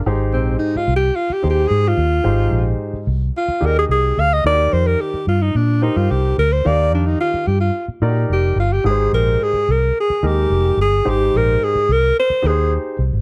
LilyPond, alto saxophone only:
\new Staff \with { instrumentName = "Alto saxophone" } { \time 4/4 \key aes \lydian \tempo 4 = 109 r8 c'8 \tuplet 3/2 { ees'8 f'8 g'8 f'8 g'8 g'8 aes'8 f'4~ } | f'8. r4 r16 f'8 bes'16 aes'16 aes'8 f''16 ees''16 | d''8 c''16 bes'16 g'8 f'16 ees'16 d'8 ees'16 f'16 g'8 bes'16 c''16 | d''8 d'16 ees'16 f'8 g'16 f'8 r8. g'8 f'16 g'16 |
aes'8 bes'8 aes'8 bes'8 aes'8 g'4 aes'8 | g'8 bes'8 aes'8 bes'8 c''8 aes'8 r4 | }